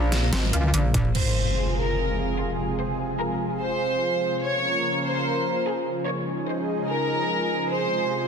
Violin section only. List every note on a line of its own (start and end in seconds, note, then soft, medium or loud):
1.15 1.68 C5 medium
1.77 2.30 A#4 medium
2.38 2.66 F4 medium
2.79 3.07 C5 medium
3.20 3.48 A#4 medium
3.61 4.35 C5 medium
4.44 4.97 C#5 medium
5.05 5.59 C5 medium
5.67 5.95 G#4 medium
6.08 6.36 C#5 medium
6.49 6.77 C5 medium
6.90 7.64 A#4 medium
7.72 8.26 C5 medium